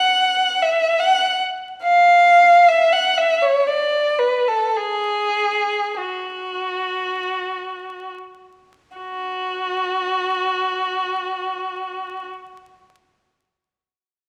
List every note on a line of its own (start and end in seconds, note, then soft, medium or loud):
0.00 0.60 F#5 medium
0.62 1.00 E5 medium
0.99 1.40 F#5 medium
1.83 2.66 F5 medium
2.68 2.92 E5 medium
2.92 3.17 F#5 medium
3.18 3.42 E5 medium
3.42 3.67 C#5 medium
3.66 4.19 D5 medium
4.19 4.46 B4 medium
4.48 4.76 A4 soft
4.77 5.97 G#4 medium
5.98 8.10 F#4 soft
8.97 12.26 F#4 soft